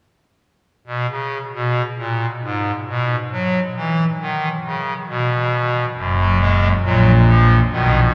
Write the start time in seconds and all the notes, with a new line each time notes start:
0.87 B2
1.10 C#3
1.54 B2
1.98 A#2
2.44 G#2
2.88 B2
3.32 F#3
3.77 E3
4.21 D#3
4.66 C#3
5.09 B2
5.97 F#1 F#2
6.19 F#3
6.40 G#3
6.84 A#1 A#2 F#3
7.28 F3
7.72 B1 B2 D#3